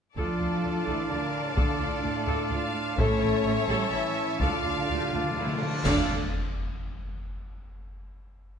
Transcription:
0.15 0.25 D2 soft
0.15 2.94 A2 soft
0.15 0.83 F3 soft
0.15 2.93 D4 soft
0.15 2.95 D4 soft
0.15 0.83 F4 medium
0.15 2.95 F4 soft
0.15 0.39 A4 soft
0.15 1.07 A4 soft
0.15 2.94 D5 soft
0.15 2.95 D5 soft
0.15 2.95 F5 soft
0.15 2.94 A5 soft
0.15 5.82 A5 soft
0.15 taiko soft
0.40 0.48 D2 soft
0.40 0.48 F4 soft
0.64 0.72 D2 soft
0.64 0.72 D4 soft
0.86 0.95 D2 soft
0.86 1.10 E3 soft
0.86 1.10 E4 medium
0.86 1.09 A4 soft
0.86 taiko soft
1.10 1.18 D2 soft
1.10 1.46 D3 soft
1.10 1.45 D4 medium
1.10 1.18 F4 soft
1.10 1.57 A#4 soft
1.45 1.58 C#3 soft
1.45 1.57 C#4 medium
1.56 1.64 D2 medium
1.56 2.03 D3 medium
1.56 2.03 D4 medium
1.56 2.49 A4 medium
1.56 1.79 A4 medium
1.56 taiko medium
1.80 1.88 D2 soft
1.80 1.89 F4 soft
2.03 2.12 D2 soft
2.03 2.73 A2 soft
2.03 2.73 A3 medium
2.03 2.13 D4 soft
2.27 2.35 D2 medium
2.27 2.50 A4 medium
2.50 2.59 D2 soft
2.50 2.61 F4 soft
2.50 2.98 F5 medium
2.97 3.06 A1 medium
2.97 5.57 A2 medium
2.97 3.65 A3 medium
2.97 4.37 C#4 medium
2.97 4.40 C#4 medium
2.97 4.40 E4 medium
2.97 3.64 A4 medium
2.97 3.21 A4 medium
2.97 4.38 C#5 medium
2.97 3.91 C#5 medium
2.97 4.40 E5 medium
2.97 4.38 E5 medium
2.97 5.61 A5 medium
2.97 taiko medium
3.22 3.30 A1 medium
3.22 3.31 E4 soft
3.46 3.54 A1 medium
3.46 3.54 C#4 soft
3.69 3.77 A1 medium
3.69 3.93 G3 medium
3.69 3.93 G4 medium
3.69 3.92 A4 medium
3.92 4.00 A1 soft
3.92 4.40 E3 medium
3.92 4.39 E4 medium
3.92 4.02 E4 medium
3.92 4.40 E5 medium
4.40 4.48 D2 medium
4.40 5.37 D3 medium
4.40 4.46 D3 soft
4.40 5.83 D4 medium
4.40 5.37 D4 medium
4.40 5.82 F4 medium
4.40 5.59 F4 medium
4.40 4.63 A4 medium
4.40 5.83 D5 medium
4.40 4.83 D5 soft
4.40 5.58 F5 medium
4.40 5.62 F5 soft
4.40 taiko medium
4.40 cymbal swell medium
4.48 4.54 D3 soft
4.55 4.62 D3 soft
4.63 4.72 D2 soft
4.63 4.68 D3 soft
4.63 4.73 F4 soft
4.70 4.77 D3 soft
4.78 4.84 D3 soft
4.89 4.98 D2 soft
4.89 5.11 G4 medium
4.94 4.99 D3 soft
5.00 5.08 D3 soft
5.09 5.15 D3 medium
5.13 5.21 D2 medium
5.13 5.23 D3 medium
5.13 5.37 F4 medium
5.24 5.30 D3 medium
5.31 5.38 D3 medium
5.36 5.45 D2 soft
5.36 5.45 D3 medium
5.36 5.60 E4 medium
5.46 5.54 D3 medium
5.55 5.61 D3 medium
5.60 5.70 D3 medium
5.60 5.85 D4 medium
5.71 5.79 D3 medium
5.84 6.13 D2 medium
5.84 6.05 A2 medium
5.84 6.08 D3 medium
5.84 6.13 D4 medium
5.84 6.06 D4 medium
5.84 6.13 D4 medium
5.84 6.05 F4 medium
5.84 6.12 F4 medium
5.84 6.13 A4 medium
5.84 6.13 D5 medium
5.84 6.14 D5 medium
5.84 6.13 F5 medium
5.84 concert bass drum medium
5.84 taiko low medium
5.84 crash medium
5.84 impact medium

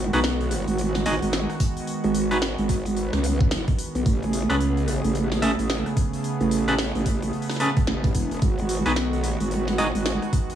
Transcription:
0.00 0.11 G#1 loud
0.00 4.02 D#3 medium
0.00 4.02 G#3 medium
0.00 10.55 B3 medium
0.00 4.02 F#4 medium
0.13 0.65 B1 loud
0.13 0.19 D#4 medium
0.13 0.19 F#4 medium
0.13 0.19 G#4 medium
0.13 0.19 B4 loud
0.13 open hi-hat soft
0.24 snare loud
0.24 open hi-hat soft
0.41 open hi-hat soft
0.51 open hi-hat medium
0.68 1.04 G#1 medium
0.68 open hi-hat soft
0.78 open hi-hat soft
0.95 snare soft
0.95 open hi-hat soft
1.06 1.20 G#1 loud
1.06 1.14 D#4 medium
1.06 1.14 F#4 medium
1.06 1.14 G#4 medium
1.06 1.14 D#5 loud
1.06 open hi-hat medium
1.22 1.47 G#1 loud
1.22 open hi-hat soft
1.33 snare loud
1.33 open hi-hat soft
1.50 cross-stick soft
1.50 open hi-hat soft
1.60 kick loud
1.60 open hi-hat medium
1.77 open hi-hat soft
1.87 open hi-hat soft
2.04 2.56 G#1 loud
2.04 open hi-hat soft
2.15 open hi-hat medium
2.31 2.37 D#4 medium
2.31 2.37 F#4 medium
2.31 2.37 G#4 medium
2.31 2.37 B4 loud
2.31 open hi-hat soft
2.42 snare loud
2.42 open hi-hat soft
2.58 3.11 G#1 loud
2.58 open hi-hat soft
2.69 kick medium
2.69 open hi-hat medium
2.86 open hi-hat soft
2.96 open hi-hat soft
3.13 3.49 C#2 loud
3.13 cross-stick medium
3.13 snare soft
3.13 open hi-hat soft
3.24 open hi-hat medium
3.41 kick loud
3.51 3.65 F#1 medium
3.51 snare loud
3.51 open hi-hat soft
3.68 kick loud
3.68 open hi-hat soft
3.79 open hi-hat medium
3.95 4.04 B1 loud
3.95 open hi-hat soft
4.06 4.47 A1 loud
4.06 8.38 C#3 medium
4.06 8.38 A3 medium
4.06 8.38 G#4 medium
4.06 kick loud
4.06 open hi-hat soft
4.23 open hi-hat soft
4.33 open hi-hat medium
4.50 5.02 C#2 loud
4.50 4.55 C#4 medium
4.50 4.55 G#4 medium
4.50 4.55 A4 medium
4.50 4.55 B4 loud
4.50 open hi-hat soft
4.61 open hi-hat soft
4.77 open hi-hat soft
4.88 open hi-hat medium
5.04 5.41 A1 medium
5.04 open hi-hat soft
5.15 open hi-hat soft
5.32 snare soft
5.32 open hi-hat soft
5.42 5.56 A1 loud
5.42 5.51 C#4 medium
5.42 5.50 G#4 medium
5.42 5.50 A4 medium
5.42 5.50 E5 loud
5.42 open hi-hat medium
5.59 5.83 A1 loud
5.59 open hi-hat soft
5.70 snare loud
5.70 open hi-hat soft
5.86 cross-stick soft
5.86 open hi-hat soft
5.97 kick loud
5.97 open hi-hat medium
6.13 open hi-hat soft
6.24 open hi-hat soft
6.41 6.93 A1 loud
6.41 open hi-hat soft
6.51 open hi-hat medium
6.68 6.73 C#4 medium
6.68 6.73 G#4 medium
6.68 6.73 A4 medium
6.68 6.73 B4 loud
6.68 open hi-hat soft
6.78 snare loud
6.78 open hi-hat soft
6.95 7.31 A1 loud
6.95 open hi-hat soft
7.06 kick medium
7.06 open hi-hat medium
7.22 open hi-hat soft
7.33 open hi-hat soft
7.42 open hi-hat soft
7.50 cross-stick medium
7.50 snare soft
7.50 open hi-hat soft
7.51 snare soft
7.51 open hi-hat soft
7.56 7.69 B4 medium
7.56 snare soft
7.60 7.69 C#4 medium
7.60 7.69 G#4 medium
7.60 7.69 A4 medium
7.60 snare soft
7.60 open hi-hat medium
7.66 snare soft
7.69 snare soft
7.77 kick loud
7.77 open hi-hat soft
7.87 8.13 A1 medium
7.87 snare loud
8.04 kick loud
8.04 open hi-hat soft
8.15 8.40 E1 loud
8.15 kick medium
8.15 open hi-hat medium
8.31 open hi-hat soft
8.42 8.83 G#1 loud
8.42 10.55 D#3 medium
8.42 10.55 G#3 medium
8.42 10.55 F#4 medium
8.42 kick loud
8.42 open hi-hat soft
8.58 open hi-hat soft
8.69 open hi-hat medium
8.86 9.38 B1 loud
8.86 8.91 D#4 medium
8.86 8.91 F#4 medium
8.86 8.91 G#4 medium
8.86 8.91 B4 loud
8.86 open hi-hat soft
8.96 snare loud
8.96 open hi-hat soft
9.13 open hi-hat soft
9.24 open hi-hat medium
9.40 9.77 G#1 loud
9.40 open hi-hat soft
9.51 open hi-hat soft
9.68 snare soft
9.68 open hi-hat soft
9.78 9.92 G#1 medium
9.78 9.87 D#4 medium
9.78 9.87 F#4 medium
9.78 9.87 G#4 medium
9.78 9.87 D#5 loud
9.78 open hi-hat medium
9.95 10.20 G#1 loud
9.95 open hi-hat soft
10.06 snare loud
10.06 open hi-hat soft
10.22 cross-stick soft
10.22 open hi-hat soft
10.33 kick loud
10.33 open hi-hat medium
10.50 open hi-hat soft

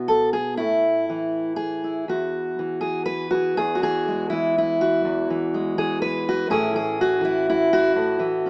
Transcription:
0.00 0.60 B2 medium
0.00 0.62 B3 medium
0.00 0.34 F#4 medium
0.08 0.33 A4 medium
0.33 0.57 G#4 medium
0.57 2.05 A2 medium
0.57 1.56 E4 medium
1.10 2.58 E3 medium
1.56 2.07 G#4 medium
1.84 2.09 E4 soft
2.08 3.57 E2 medium
2.08 3.29 F#4 medium
2.59 3.81 E3 medium
2.81 3.05 G#4 medium
3.06 3.34 B4 loud
3.31 3.57 F#4 medium
3.31 3.56 G#4 soft
3.57 5.04 E2 medium
3.57 3.82 G#4 loud
3.75 4.32 F#4 medium
3.82 4.32 E3 medium
3.82 4.29 G#4 loud
4.08 5.53 G#3 soft
4.30 5.30 E3 medium
4.30 4.55 E4 medium
4.58 5.30 E4 medium
4.81 6.27 F#4 loud
5.05 6.49 E2 medium
5.30 5.78 E3 medium
5.54 6.51 G#3 soft
5.78 6.50 E3 medium
5.78 6.01 G#4 medium
6.02 6.50 B4 loud
6.29 6.51 F#4 loud
6.50 7.93 A2 medium
6.50 6.73 E3 medium
6.50 7.94 C#4 medium
6.50 7.01 E4 medium
6.50 6.75 G#4 loud
6.74 7.21 E3 medium
6.74 7.24 G#4 loud
7.01 7.72 F#4 loud
7.21 8.18 E3 medium
7.21 7.48 E4 medium
7.50 8.22 E4 loud
7.73 8.50 F#4 loud
7.95 8.50 A2 medium
8.19 8.50 E3 medium
8.46 8.50 C#4 soft

